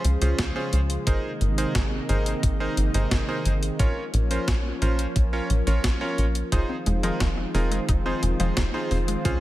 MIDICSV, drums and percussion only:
0, 0, Header, 1, 2, 480
1, 0, Start_track
1, 0, Key_signature, -4, "minor"
1, 0, Tempo, 681818
1, 753, Time_signature, 4, 2, 24, 8
1, 6618, End_track
2, 0, Start_track
2, 0, Title_t, "Drums"
2, 32, Note_on_c, 9, 42, 68
2, 102, Note_off_c, 9, 42, 0
2, 152, Note_on_c, 9, 42, 69
2, 222, Note_off_c, 9, 42, 0
2, 272, Note_on_c, 9, 36, 111
2, 272, Note_on_c, 9, 38, 112
2, 272, Note_on_c, 9, 42, 89
2, 342, Note_off_c, 9, 38, 0
2, 342, Note_off_c, 9, 42, 0
2, 343, Note_off_c, 9, 36, 0
2, 512, Note_on_c, 9, 42, 67
2, 583, Note_off_c, 9, 42, 0
2, 632, Note_on_c, 9, 42, 68
2, 702, Note_off_c, 9, 42, 0
2, 752, Note_on_c, 9, 36, 121
2, 752, Note_on_c, 9, 42, 84
2, 822, Note_off_c, 9, 36, 0
2, 822, Note_off_c, 9, 42, 0
2, 993, Note_on_c, 9, 42, 61
2, 1063, Note_off_c, 9, 42, 0
2, 1112, Note_on_c, 9, 42, 67
2, 1183, Note_off_c, 9, 42, 0
2, 1232, Note_on_c, 9, 36, 121
2, 1232, Note_on_c, 9, 38, 117
2, 1232, Note_on_c, 9, 42, 86
2, 1302, Note_off_c, 9, 36, 0
2, 1302, Note_off_c, 9, 38, 0
2, 1302, Note_off_c, 9, 42, 0
2, 1472, Note_on_c, 9, 42, 65
2, 1542, Note_off_c, 9, 42, 0
2, 1592, Note_on_c, 9, 42, 63
2, 1663, Note_off_c, 9, 42, 0
2, 1712, Note_on_c, 9, 36, 118
2, 1712, Note_on_c, 9, 42, 87
2, 1782, Note_off_c, 9, 36, 0
2, 1783, Note_off_c, 9, 42, 0
2, 1953, Note_on_c, 9, 42, 67
2, 2023, Note_off_c, 9, 42, 0
2, 2072, Note_on_c, 9, 42, 69
2, 2143, Note_off_c, 9, 42, 0
2, 2192, Note_on_c, 9, 36, 116
2, 2192, Note_on_c, 9, 38, 115
2, 2192, Note_on_c, 9, 42, 90
2, 2262, Note_off_c, 9, 36, 0
2, 2263, Note_off_c, 9, 38, 0
2, 2263, Note_off_c, 9, 42, 0
2, 2432, Note_on_c, 9, 42, 66
2, 2503, Note_off_c, 9, 42, 0
2, 2553, Note_on_c, 9, 42, 64
2, 2623, Note_off_c, 9, 42, 0
2, 2672, Note_on_c, 9, 36, 121
2, 2672, Note_on_c, 9, 42, 83
2, 2742, Note_off_c, 9, 36, 0
2, 2742, Note_off_c, 9, 42, 0
2, 2912, Note_on_c, 9, 42, 60
2, 2983, Note_off_c, 9, 42, 0
2, 3032, Note_on_c, 9, 42, 64
2, 3103, Note_off_c, 9, 42, 0
2, 3152, Note_on_c, 9, 36, 122
2, 3153, Note_on_c, 9, 38, 117
2, 3153, Note_on_c, 9, 42, 87
2, 3222, Note_off_c, 9, 36, 0
2, 3223, Note_off_c, 9, 38, 0
2, 3223, Note_off_c, 9, 42, 0
2, 3392, Note_on_c, 9, 42, 62
2, 3463, Note_off_c, 9, 42, 0
2, 3512, Note_on_c, 9, 42, 60
2, 3582, Note_off_c, 9, 42, 0
2, 3631, Note_on_c, 9, 42, 86
2, 3632, Note_on_c, 9, 36, 118
2, 3702, Note_off_c, 9, 36, 0
2, 3702, Note_off_c, 9, 42, 0
2, 3872, Note_on_c, 9, 42, 63
2, 3942, Note_off_c, 9, 42, 0
2, 3992, Note_on_c, 9, 42, 67
2, 4062, Note_off_c, 9, 42, 0
2, 4112, Note_on_c, 9, 36, 110
2, 4112, Note_on_c, 9, 38, 117
2, 4112, Note_on_c, 9, 42, 84
2, 4182, Note_off_c, 9, 36, 0
2, 4182, Note_off_c, 9, 38, 0
2, 4182, Note_off_c, 9, 42, 0
2, 4352, Note_on_c, 9, 42, 61
2, 4423, Note_off_c, 9, 42, 0
2, 4471, Note_on_c, 9, 42, 64
2, 4542, Note_off_c, 9, 42, 0
2, 4591, Note_on_c, 9, 36, 119
2, 4592, Note_on_c, 9, 42, 82
2, 4662, Note_off_c, 9, 36, 0
2, 4662, Note_off_c, 9, 42, 0
2, 4832, Note_on_c, 9, 42, 58
2, 4902, Note_off_c, 9, 42, 0
2, 4952, Note_on_c, 9, 42, 61
2, 5022, Note_off_c, 9, 42, 0
2, 5072, Note_on_c, 9, 36, 121
2, 5072, Note_on_c, 9, 38, 107
2, 5072, Note_on_c, 9, 42, 82
2, 5142, Note_off_c, 9, 36, 0
2, 5142, Note_off_c, 9, 38, 0
2, 5142, Note_off_c, 9, 42, 0
2, 5312, Note_on_c, 9, 46, 70
2, 5383, Note_off_c, 9, 46, 0
2, 5432, Note_on_c, 9, 42, 61
2, 5502, Note_off_c, 9, 42, 0
2, 5551, Note_on_c, 9, 42, 84
2, 5552, Note_on_c, 9, 36, 114
2, 5622, Note_off_c, 9, 36, 0
2, 5622, Note_off_c, 9, 42, 0
2, 5792, Note_on_c, 9, 42, 62
2, 5862, Note_off_c, 9, 42, 0
2, 5912, Note_on_c, 9, 42, 65
2, 5982, Note_off_c, 9, 42, 0
2, 6032, Note_on_c, 9, 36, 106
2, 6032, Note_on_c, 9, 38, 109
2, 6032, Note_on_c, 9, 42, 84
2, 6102, Note_off_c, 9, 38, 0
2, 6102, Note_off_c, 9, 42, 0
2, 6103, Note_off_c, 9, 36, 0
2, 6272, Note_on_c, 9, 46, 74
2, 6343, Note_off_c, 9, 46, 0
2, 6393, Note_on_c, 9, 42, 62
2, 6463, Note_off_c, 9, 42, 0
2, 6512, Note_on_c, 9, 36, 109
2, 6512, Note_on_c, 9, 42, 86
2, 6582, Note_off_c, 9, 42, 0
2, 6583, Note_off_c, 9, 36, 0
2, 6618, End_track
0, 0, End_of_file